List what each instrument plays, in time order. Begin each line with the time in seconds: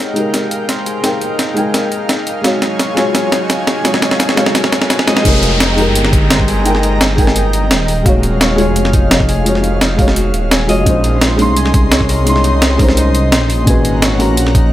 Already playing: felt piano G#3 D#4 G4 A#4, analog synth pad G#3 D#4 A#4 F5 G5, harp G#4 A#4 C#5, riser
0.00 harp D#4
0.14 felt piano G#3 D#4 G4, closed hi-hat
0.19 felt piano A#4
0.34 harp G4, snare, closed hi-hat
0.51 closed hi-hat
0.69 harp C5, snare, closed hi-hat
0.86 harp G#4, closed hi-hat
1.01 felt piano G#3 D#4 G5, snare, closed hi-hat
1.07 felt piano A#4
1.21 harp D#4, closed hi-hat
1.39 snare, closed hi-hat
1.54 felt piano G#3 D#4 G5, harp G#4, closed hi-hat
1.59 felt piano A#4
1.74 harp D#4, snare, closed hi-hat
1.92 closed hi-hat
2.09 harp D#4, snare, closed hi-hat
2.27 analog synth pad F#3 C#5 G#5, closed hi-hat
2.42 felt piano G#3 F#4 F5, harp F#4, snare, closed hi-hat
2.47 felt piano C#5
2.62 snare, closed hi-hat
2.79 harp C#5, snare, closed hi-hat
2.94 felt piano G#3 F4 F#4, harp G#4, snare, closed hi-hat
3.00 felt piano C#5
3.15 snare, closed hi-hat
3.32 harp D#4, snare, closed hi-hat
3.50 snare, closed hi-hat
3.67 harp G#4, snare, closed hi-hat
3.82 felt piano G#3 F4 F#4, harp D#4, snare, closed hi-hat
3.87 felt piano C#5
3.94 snare
4.02 snare, closed hi-hat
4.11 snare
4.20 harp D#4, snare, closed hi-hat
4.29 snare
4.35 felt piano G#3 F#4 F5, snare, closed hi-hat
4.40 felt piano C#5
4.46 snare
4.55 harp F#4, snare, closed hi-hat
4.64 snare
4.72 snare, closed hi-hat
4.82 snare
4.90 harp G#4, snare, closed hi-hat
4.99 snare
5.06 felt piano G#3 F4 F#4 C#5, harp D#5, snare, closed hi-hat
5.17 snare
5.23 detuned saw bass F1, felt piano G#3 D#4 G4, analog synth pad G#3 D#5 G5 A#5, harp D#4, kick, closed hi-hat, crash, downlifter
5.28 felt piano A#4
5.43 closed hi-hat
5.60 harp D#4, snare, closed hi-hat
5.75 felt piano G#3 D#4 G4, open hi-hat
5.81 felt piano A#4
5.87 detuned saw bass G1
5.95 harp G4, closed hi-hat
6.05 snare
6.13 kick, closed hi-hat
6.30 harp C5, snare, closed hi-hat
6.39 kick, snare
6.48 harp G#4, open hi-hat
6.63 felt piano G#3 D#4 G5, closed hi-hat
6.68 felt piano A#4
6.75 snare
6.83 harp D#4, closed hi-hat
7.01 snare, closed hi-hat
7.16 felt piano G#3 D#4 G5, harp G#4, kick, open hi-hat
7.21 felt piano A#4
7.27 detuned saw bass G1, snare
7.36 harp D#4, closed hi-hat
7.53 closed hi-hat
7.71 detuned saw bass D#1, harp D#4, snare, closed hi-hat
7.88 analog synth pad F5, open hi-hat
8.03 felt piano G#3 F#4 F5, harp F#4, kick, closed hi-hat
8.09 felt piano C#5
8.23 closed hi-hat
8.41 harp C#5, snare, closed hi-hat
8.56 felt piano G#3 F4 F#4, harp G#4, open hi-hat
8.61 felt piano C#5
8.67 detuned saw bass F1
8.76 closed hi-hat
8.85 snare
8.93 harp D#4, kick, closed hi-hat
9.11 snare, closed hi-hat
9.20 kick, snare
9.29 harp G#4, open hi-hat
9.44 felt piano G#3 F4 F#4, harp D#4, closed hi-hat
9.49 felt piano C#5
9.55 snare
9.64 closed hi-hat
9.81 harp D#4, snare, closed hi-hat
9.96 felt piano G#3 F#4 F5, kick, open hi-hat
10.02 felt piano C#5
10.08 detuned saw bass F1, snare
10.16 harp F#4, closed hi-hat
10.34 detuned saw bass D#1, closed hi-hat
10.51 harp G#4, snare, closed hi-hat
10.67 detuned saw bass F1, felt piano G#3 F4 F#4 C#5, harp D#5, open hi-hat
10.78 detuned saw bass F#1
10.84 detuned saw bass A#1, felt piano G#3 C#4 D#4, harp D#4, analog synth pad D#5 C6, kick, closed hi-hat
10.89 felt piano C5
11.04 closed hi-hat
11.21 harp D#4, snare, closed hi-hat
11.36 felt piano G#3 C#4 D#4, open hi-hat
11.42 felt piano C6
11.48 detuned saw bass C2
11.57 harp G#4, closed hi-hat
11.66 snare
11.74 kick, closed hi-hat
11.92 harp C#5, snare, closed hi-hat
12.01 kick, snare
12.09 harp A#4, open hi-hat
12.24 felt piano G#3 C#4 D#4, closed hi-hat
12.29 felt piano C6
12.36 snare
12.44 harp D#4, closed hi-hat
12.62 snare, closed hi-hat
12.77 felt piano G#3 C#4 D#4, harp A#4, kick, open hi-hat
12.82 felt piano C5
12.88 detuned saw bass C2, snare
12.97 harp D#4, closed hi-hat
13.15 closed hi-hat
13.32 detuned saw bass A#1, harp D#4, snare, closed hi-hat
13.50 open hi-hat
13.65 detuned saw bass G#1, felt piano A#2 C#4 F#4, harp G#4, analog synth pad F#5 A#5, kick, closed hi-hat
13.70 felt piano B4
13.85 closed hi-hat
14.02 harp C#5, snare, closed hi-hat
14.17 felt piano A#3 C#4 F#4, harp A#4, open hi-hat
14.29 detuned saw bass A#1
14.37 closed hi-hat
14.47 snare
14.55 harp D#4, kick, closed hi-hat